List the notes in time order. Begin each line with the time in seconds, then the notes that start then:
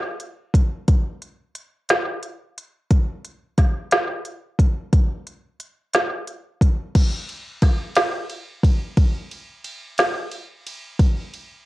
0.20 closed hi-hat
0.54 kick, closed hi-hat
0.88 kick, closed hi-hat
1.22 closed hi-hat
1.55 closed hi-hat
1.89 snare, closed hi-hat
2.23 closed hi-hat
2.58 closed hi-hat
2.91 kick, closed hi-hat
3.25 closed hi-hat
3.58 kick, snare, closed hi-hat
3.91 snare, closed hi-hat
4.25 closed hi-hat
4.59 kick, closed hi-hat
4.93 kick, closed hi-hat
5.27 closed hi-hat
5.60 closed hi-hat
5.94 snare, closed hi-hat
6.27 closed hi-hat
6.61 kick, closed hi-hat
6.95 kick, crash, ride
7.29 ride
7.62 kick, snare, ride
7.95 snare, ride
8.29 ride
8.63 kick, ride
8.97 kick, ride
9.31 ride
9.64 ride
9.98 snare, ride
10.32 ride
10.67 ride
10.99 kick, ride
11.34 ride